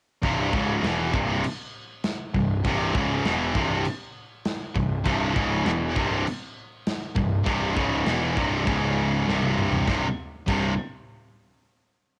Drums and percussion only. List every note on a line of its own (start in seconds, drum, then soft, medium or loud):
0.23 kick loud
0.23 crash medium
0.53 kick loud
0.84 snare loud
0.84 crash medium
1.14 kick loud
1.44 crash medium
2.04 snare loud
2.04 crash medium
2.34 kick medium
2.64 kick loud
2.64 crash medium
2.95 kick loud
3.25 snare loud
3.25 crash medium
3.55 kick loud
3.85 crash medium
4.45 snare loud
4.45 crash medium
4.76 kick medium
5.06 kick loud
5.06 crash medium
5.36 kick loud
5.66 snare loud
5.66 crash medium
5.96 kick loud
6.27 crash medium
6.87 snare loud
6.87 crash medium
7.16 kick medium
7.46 kick loud
7.46 crash medium
7.77 kick loud
8.06 snare loud
8.06 crash medium
8.37 kick loud
8.67 kick loud
8.67 crash medium
9.29 snare medium
9.43 high tom medium
9.58 mid tom loud
9.72 floor tom medium
9.87 kick loud
9.87 snare loud
10.48 kick loud
10.48 crash medium